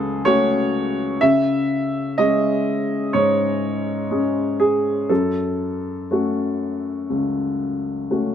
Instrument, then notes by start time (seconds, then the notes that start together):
upright piano
Already playing: C#2 A3 C#4 F#4 G#4 A4 B4
0.25 A3 C#4 F#4 C#5
1.21 C#3 E5
2.18 G#3 C#4 G#4 D#5
3.13 G#2 C#5
4.11 G#3 C#4 G#4
4.60 G#4
5.09 F#2 A4
6.11 A3 C#4 F#4
7.10 C#2
8.11 A3 C#4 F#4